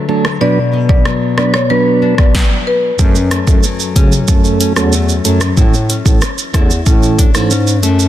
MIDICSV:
0, 0, Header, 1, 6, 480
1, 0, Start_track
1, 0, Key_signature, 3, "minor"
1, 0, Tempo, 645161
1, 305, Time_signature, 4, 2, 24, 8
1, 6014, End_track
2, 0, Start_track
2, 0, Title_t, "Marimba"
2, 0, Program_c, 0, 12
2, 306, Note_on_c, 0, 74, 90
2, 498, Note_off_c, 0, 74, 0
2, 665, Note_on_c, 0, 74, 70
2, 761, Note_off_c, 0, 74, 0
2, 1024, Note_on_c, 0, 74, 80
2, 1120, Note_off_c, 0, 74, 0
2, 1143, Note_on_c, 0, 73, 78
2, 1240, Note_off_c, 0, 73, 0
2, 1266, Note_on_c, 0, 71, 82
2, 1361, Note_off_c, 0, 71, 0
2, 1625, Note_on_c, 0, 74, 75
2, 1721, Note_off_c, 0, 74, 0
2, 1988, Note_on_c, 0, 71, 78
2, 2082, Note_off_c, 0, 71, 0
2, 6014, End_track
3, 0, Start_track
3, 0, Title_t, "Tonewheel organ"
3, 0, Program_c, 1, 16
3, 64, Note_on_c, 1, 54, 72
3, 66, Note_on_c, 1, 57, 68
3, 68, Note_on_c, 1, 62, 68
3, 69, Note_on_c, 1, 69, 79
3, 199, Note_off_c, 1, 54, 0
3, 200, Note_off_c, 1, 57, 0
3, 201, Note_off_c, 1, 62, 0
3, 202, Note_off_c, 1, 69, 0
3, 304, Note_on_c, 1, 54, 91
3, 305, Note_on_c, 1, 59, 84
3, 306, Note_on_c, 1, 62, 83
3, 308, Note_on_c, 1, 71, 102
3, 439, Note_off_c, 1, 54, 0
3, 440, Note_off_c, 1, 59, 0
3, 440, Note_off_c, 1, 62, 0
3, 441, Note_off_c, 1, 71, 0
3, 662, Note_on_c, 1, 54, 70
3, 664, Note_on_c, 1, 59, 69
3, 665, Note_on_c, 1, 62, 71
3, 667, Note_on_c, 1, 71, 80
3, 798, Note_off_c, 1, 54, 0
3, 799, Note_off_c, 1, 59, 0
3, 800, Note_off_c, 1, 62, 0
3, 801, Note_off_c, 1, 71, 0
3, 1024, Note_on_c, 1, 54, 79
3, 1025, Note_on_c, 1, 59, 73
3, 1026, Note_on_c, 1, 62, 68
3, 1027, Note_on_c, 1, 71, 85
3, 1159, Note_off_c, 1, 54, 0
3, 1160, Note_off_c, 1, 59, 0
3, 1160, Note_off_c, 1, 62, 0
3, 1161, Note_off_c, 1, 71, 0
3, 1264, Note_on_c, 1, 54, 90
3, 1266, Note_on_c, 1, 59, 83
3, 1266, Note_on_c, 1, 62, 81
3, 1268, Note_on_c, 1, 71, 94
3, 1596, Note_off_c, 1, 54, 0
3, 1597, Note_off_c, 1, 59, 0
3, 1597, Note_off_c, 1, 62, 0
3, 1598, Note_off_c, 1, 71, 0
3, 1624, Note_on_c, 1, 54, 68
3, 1626, Note_on_c, 1, 59, 64
3, 1628, Note_on_c, 1, 62, 65
3, 1628, Note_on_c, 1, 71, 78
3, 1760, Note_off_c, 1, 54, 0
3, 1760, Note_off_c, 1, 59, 0
3, 1761, Note_off_c, 1, 62, 0
3, 1761, Note_off_c, 1, 71, 0
3, 2226, Note_on_c, 1, 54, 92
3, 2226, Note_on_c, 1, 57, 82
3, 2227, Note_on_c, 1, 61, 84
3, 2229, Note_on_c, 1, 69, 97
3, 2360, Note_off_c, 1, 54, 0
3, 2360, Note_off_c, 1, 57, 0
3, 2361, Note_off_c, 1, 61, 0
3, 2362, Note_off_c, 1, 69, 0
3, 2584, Note_on_c, 1, 54, 72
3, 2585, Note_on_c, 1, 57, 68
3, 2588, Note_on_c, 1, 61, 70
3, 2588, Note_on_c, 1, 69, 77
3, 2719, Note_off_c, 1, 54, 0
3, 2720, Note_off_c, 1, 57, 0
3, 2721, Note_off_c, 1, 61, 0
3, 2722, Note_off_c, 1, 69, 0
3, 2945, Note_on_c, 1, 54, 78
3, 2947, Note_on_c, 1, 57, 73
3, 2948, Note_on_c, 1, 61, 70
3, 2950, Note_on_c, 1, 69, 88
3, 3080, Note_off_c, 1, 54, 0
3, 3081, Note_off_c, 1, 57, 0
3, 3081, Note_off_c, 1, 61, 0
3, 3082, Note_off_c, 1, 69, 0
3, 3183, Note_on_c, 1, 54, 85
3, 3185, Note_on_c, 1, 57, 84
3, 3187, Note_on_c, 1, 61, 77
3, 3189, Note_on_c, 1, 69, 98
3, 3515, Note_off_c, 1, 54, 0
3, 3516, Note_off_c, 1, 57, 0
3, 3517, Note_off_c, 1, 61, 0
3, 3518, Note_off_c, 1, 69, 0
3, 3544, Note_on_c, 1, 54, 72
3, 3545, Note_on_c, 1, 57, 67
3, 3547, Note_on_c, 1, 61, 65
3, 3549, Note_on_c, 1, 69, 79
3, 3679, Note_off_c, 1, 54, 0
3, 3680, Note_off_c, 1, 57, 0
3, 3681, Note_off_c, 1, 61, 0
3, 3682, Note_off_c, 1, 69, 0
3, 3904, Note_on_c, 1, 54, 74
3, 3905, Note_on_c, 1, 57, 67
3, 3907, Note_on_c, 1, 61, 69
3, 3908, Note_on_c, 1, 69, 82
3, 4039, Note_off_c, 1, 54, 0
3, 4040, Note_off_c, 1, 57, 0
3, 4041, Note_off_c, 1, 61, 0
3, 4041, Note_off_c, 1, 69, 0
3, 4144, Note_on_c, 1, 52, 91
3, 4146, Note_on_c, 1, 57, 83
3, 4148, Note_on_c, 1, 61, 86
3, 4149, Note_on_c, 1, 69, 101
3, 4279, Note_off_c, 1, 52, 0
3, 4280, Note_off_c, 1, 57, 0
3, 4281, Note_off_c, 1, 61, 0
3, 4282, Note_off_c, 1, 69, 0
3, 4505, Note_on_c, 1, 52, 78
3, 4505, Note_on_c, 1, 57, 66
3, 4508, Note_on_c, 1, 61, 69
3, 4508, Note_on_c, 1, 69, 84
3, 4640, Note_off_c, 1, 52, 0
3, 4640, Note_off_c, 1, 57, 0
3, 4641, Note_off_c, 1, 61, 0
3, 4642, Note_off_c, 1, 69, 0
3, 4863, Note_on_c, 1, 52, 81
3, 4865, Note_on_c, 1, 57, 72
3, 4866, Note_on_c, 1, 61, 70
3, 4868, Note_on_c, 1, 69, 89
3, 4999, Note_off_c, 1, 52, 0
3, 5000, Note_off_c, 1, 57, 0
3, 5000, Note_off_c, 1, 61, 0
3, 5001, Note_off_c, 1, 69, 0
3, 5104, Note_on_c, 1, 52, 91
3, 5106, Note_on_c, 1, 57, 83
3, 5107, Note_on_c, 1, 61, 83
3, 5109, Note_on_c, 1, 69, 99
3, 5436, Note_off_c, 1, 52, 0
3, 5437, Note_off_c, 1, 57, 0
3, 5438, Note_off_c, 1, 61, 0
3, 5438, Note_off_c, 1, 69, 0
3, 5463, Note_on_c, 1, 52, 71
3, 5464, Note_on_c, 1, 57, 65
3, 5466, Note_on_c, 1, 61, 67
3, 5467, Note_on_c, 1, 69, 78
3, 5599, Note_off_c, 1, 52, 0
3, 5599, Note_off_c, 1, 57, 0
3, 5601, Note_off_c, 1, 61, 0
3, 5601, Note_off_c, 1, 69, 0
3, 6014, End_track
4, 0, Start_track
4, 0, Title_t, "Nylon-string guitar"
4, 0, Program_c, 2, 24
4, 0, Note_on_c, 2, 50, 84
4, 0, Note_on_c, 2, 57, 63
4, 0, Note_on_c, 2, 62, 68
4, 64, Note_on_c, 2, 54, 62
4, 303, Note_off_c, 2, 50, 0
4, 306, Note_on_c, 2, 47, 85
4, 308, Note_off_c, 2, 62, 0
4, 311, Note_on_c, 2, 62, 69
4, 353, Note_off_c, 2, 57, 0
4, 545, Note_on_c, 2, 59, 59
4, 783, Note_off_c, 2, 54, 0
4, 786, Note_on_c, 2, 54, 63
4, 1015, Note_off_c, 2, 59, 0
4, 1024, Note_on_c, 2, 59, 59
4, 1260, Note_off_c, 2, 54, 0
4, 1263, Note_on_c, 2, 54, 69
4, 1495, Note_off_c, 2, 62, 0
4, 1503, Note_on_c, 2, 62, 69
4, 1792, Note_off_c, 2, 62, 0
4, 1793, Note_off_c, 2, 59, 0
4, 1794, Note_off_c, 2, 47, 0
4, 2164, Note_off_c, 2, 54, 0
4, 2225, Note_on_c, 2, 42, 84
4, 2229, Note_on_c, 2, 61, 73
4, 2465, Note_on_c, 2, 57, 61
4, 2706, Note_on_c, 2, 54, 61
4, 2944, Note_off_c, 2, 61, 0
4, 2947, Note_on_c, 2, 61, 66
4, 3185, Note_off_c, 2, 57, 0
4, 3188, Note_on_c, 2, 57, 66
4, 3424, Note_off_c, 2, 61, 0
4, 3427, Note_on_c, 2, 61, 67
4, 3665, Note_off_c, 2, 57, 0
4, 3668, Note_on_c, 2, 57, 66
4, 3901, Note_off_c, 2, 54, 0
4, 3909, Note_on_c, 2, 54, 65
4, 4145, Note_off_c, 2, 42, 0
4, 4149, Note_off_c, 2, 61, 0
4, 4152, Note_on_c, 2, 64, 69
4, 4195, Note_off_c, 2, 54, 0
4, 4383, Note_off_c, 2, 57, 0
4, 4386, Note_on_c, 2, 61, 60
4, 4857, Note_off_c, 2, 64, 0
4, 4866, Note_on_c, 2, 64, 71
4, 5096, Note_off_c, 2, 61, 0
4, 5105, Note_on_c, 2, 61, 67
4, 5343, Note_off_c, 2, 64, 0
4, 5346, Note_on_c, 2, 62, 69
4, 5465, Note_off_c, 2, 62, 0
4, 5465, Note_on_c, 2, 64, 56
4, 5577, Note_off_c, 2, 61, 0
4, 5586, Note_on_c, 2, 61, 64
4, 5825, Note_on_c, 2, 57, 68
4, 6014, Note_off_c, 2, 57, 0
4, 6014, Note_off_c, 2, 61, 0
4, 6014, Note_off_c, 2, 64, 0
4, 6014, End_track
5, 0, Start_track
5, 0, Title_t, "Bass clarinet"
5, 0, Program_c, 3, 71
5, 2226, Note_on_c, 3, 42, 111
5, 2521, Note_off_c, 3, 42, 0
5, 2584, Note_on_c, 3, 42, 101
5, 2683, Note_off_c, 3, 42, 0
5, 2947, Note_on_c, 3, 49, 89
5, 3187, Note_on_c, 3, 42, 91
5, 3198, Note_off_c, 3, 49, 0
5, 3481, Note_off_c, 3, 42, 0
5, 3544, Note_on_c, 3, 40, 82
5, 3839, Note_off_c, 3, 40, 0
5, 3905, Note_on_c, 3, 42, 86
5, 4102, Note_off_c, 3, 42, 0
5, 4147, Note_on_c, 3, 45, 106
5, 4441, Note_off_c, 3, 45, 0
5, 4506, Note_on_c, 3, 45, 90
5, 4604, Note_off_c, 3, 45, 0
5, 4867, Note_on_c, 3, 40, 85
5, 5063, Note_off_c, 3, 40, 0
5, 5107, Note_on_c, 3, 45, 98
5, 5401, Note_off_c, 3, 45, 0
5, 5467, Note_on_c, 3, 44, 87
5, 5826, Note_on_c, 3, 42, 97
5, 5837, Note_off_c, 3, 44, 0
5, 6014, Note_off_c, 3, 42, 0
5, 6014, End_track
6, 0, Start_track
6, 0, Title_t, "Drums"
6, 184, Note_on_c, 9, 37, 89
6, 259, Note_off_c, 9, 37, 0
6, 664, Note_on_c, 9, 36, 89
6, 738, Note_off_c, 9, 36, 0
6, 785, Note_on_c, 9, 37, 91
6, 859, Note_off_c, 9, 37, 0
6, 1024, Note_on_c, 9, 37, 92
6, 1099, Note_off_c, 9, 37, 0
6, 1144, Note_on_c, 9, 37, 93
6, 1219, Note_off_c, 9, 37, 0
6, 1624, Note_on_c, 9, 37, 87
6, 1626, Note_on_c, 9, 36, 92
6, 1698, Note_off_c, 9, 37, 0
6, 1700, Note_off_c, 9, 36, 0
6, 1745, Note_on_c, 9, 36, 104
6, 1746, Note_on_c, 9, 38, 86
6, 1820, Note_off_c, 9, 36, 0
6, 1820, Note_off_c, 9, 38, 0
6, 2225, Note_on_c, 9, 82, 63
6, 2226, Note_on_c, 9, 36, 104
6, 2299, Note_off_c, 9, 82, 0
6, 2300, Note_off_c, 9, 36, 0
6, 2347, Note_on_c, 9, 82, 47
6, 2421, Note_off_c, 9, 82, 0
6, 2465, Note_on_c, 9, 37, 92
6, 2465, Note_on_c, 9, 42, 69
6, 2465, Note_on_c, 9, 82, 51
6, 2539, Note_off_c, 9, 37, 0
6, 2539, Note_off_c, 9, 42, 0
6, 2539, Note_off_c, 9, 82, 0
6, 2585, Note_on_c, 9, 36, 94
6, 2586, Note_on_c, 9, 82, 79
6, 2659, Note_off_c, 9, 36, 0
6, 2660, Note_off_c, 9, 82, 0
6, 2703, Note_on_c, 9, 82, 82
6, 2777, Note_off_c, 9, 82, 0
6, 2825, Note_on_c, 9, 82, 55
6, 2900, Note_off_c, 9, 82, 0
6, 2946, Note_on_c, 9, 36, 91
6, 2948, Note_on_c, 9, 42, 78
6, 2948, Note_on_c, 9, 82, 57
6, 3020, Note_off_c, 9, 36, 0
6, 3022, Note_off_c, 9, 42, 0
6, 3022, Note_off_c, 9, 82, 0
6, 3066, Note_on_c, 9, 82, 72
6, 3140, Note_off_c, 9, 82, 0
6, 3185, Note_on_c, 9, 82, 84
6, 3187, Note_on_c, 9, 36, 97
6, 3259, Note_off_c, 9, 82, 0
6, 3261, Note_off_c, 9, 36, 0
6, 3306, Note_on_c, 9, 82, 52
6, 3381, Note_off_c, 9, 82, 0
6, 3426, Note_on_c, 9, 42, 87
6, 3426, Note_on_c, 9, 82, 59
6, 3501, Note_off_c, 9, 42, 0
6, 3501, Note_off_c, 9, 82, 0
6, 3545, Note_on_c, 9, 37, 88
6, 3546, Note_on_c, 9, 82, 72
6, 3619, Note_off_c, 9, 37, 0
6, 3620, Note_off_c, 9, 82, 0
6, 3665, Note_on_c, 9, 82, 70
6, 3739, Note_off_c, 9, 82, 0
6, 3786, Note_on_c, 9, 82, 50
6, 3861, Note_off_c, 9, 82, 0
6, 3906, Note_on_c, 9, 42, 77
6, 3906, Note_on_c, 9, 82, 53
6, 3980, Note_off_c, 9, 42, 0
6, 3980, Note_off_c, 9, 82, 0
6, 4025, Note_on_c, 9, 37, 92
6, 4026, Note_on_c, 9, 82, 74
6, 4100, Note_off_c, 9, 37, 0
6, 4100, Note_off_c, 9, 82, 0
6, 4146, Note_on_c, 9, 82, 62
6, 4147, Note_on_c, 9, 36, 103
6, 4220, Note_off_c, 9, 82, 0
6, 4221, Note_off_c, 9, 36, 0
6, 4268, Note_on_c, 9, 82, 47
6, 4342, Note_off_c, 9, 82, 0
6, 4387, Note_on_c, 9, 42, 71
6, 4387, Note_on_c, 9, 82, 50
6, 4462, Note_off_c, 9, 42, 0
6, 4462, Note_off_c, 9, 82, 0
6, 4506, Note_on_c, 9, 36, 95
6, 4510, Note_on_c, 9, 82, 80
6, 4581, Note_off_c, 9, 36, 0
6, 4584, Note_off_c, 9, 82, 0
6, 4625, Note_on_c, 9, 82, 83
6, 4628, Note_on_c, 9, 37, 94
6, 4700, Note_off_c, 9, 82, 0
6, 4702, Note_off_c, 9, 37, 0
6, 4749, Note_on_c, 9, 82, 56
6, 4823, Note_off_c, 9, 82, 0
6, 4867, Note_on_c, 9, 36, 93
6, 4868, Note_on_c, 9, 37, 92
6, 4869, Note_on_c, 9, 42, 79
6, 4869, Note_on_c, 9, 82, 55
6, 4941, Note_off_c, 9, 36, 0
6, 4943, Note_off_c, 9, 37, 0
6, 4944, Note_off_c, 9, 42, 0
6, 4944, Note_off_c, 9, 82, 0
6, 4988, Note_on_c, 9, 82, 70
6, 5063, Note_off_c, 9, 82, 0
6, 5106, Note_on_c, 9, 82, 84
6, 5107, Note_on_c, 9, 36, 95
6, 5181, Note_off_c, 9, 82, 0
6, 5182, Note_off_c, 9, 36, 0
6, 5229, Note_on_c, 9, 82, 51
6, 5303, Note_off_c, 9, 82, 0
6, 5346, Note_on_c, 9, 36, 84
6, 5349, Note_on_c, 9, 42, 83
6, 5349, Note_on_c, 9, 82, 62
6, 5421, Note_off_c, 9, 36, 0
6, 5423, Note_off_c, 9, 42, 0
6, 5423, Note_off_c, 9, 82, 0
6, 5466, Note_on_c, 9, 37, 86
6, 5467, Note_on_c, 9, 82, 72
6, 5540, Note_off_c, 9, 37, 0
6, 5541, Note_off_c, 9, 82, 0
6, 5586, Note_on_c, 9, 82, 76
6, 5660, Note_off_c, 9, 82, 0
6, 5708, Note_on_c, 9, 82, 50
6, 5783, Note_off_c, 9, 82, 0
6, 5827, Note_on_c, 9, 42, 76
6, 5827, Note_on_c, 9, 82, 54
6, 5902, Note_off_c, 9, 42, 0
6, 5902, Note_off_c, 9, 82, 0
6, 5948, Note_on_c, 9, 82, 73
6, 6014, Note_off_c, 9, 82, 0
6, 6014, End_track
0, 0, End_of_file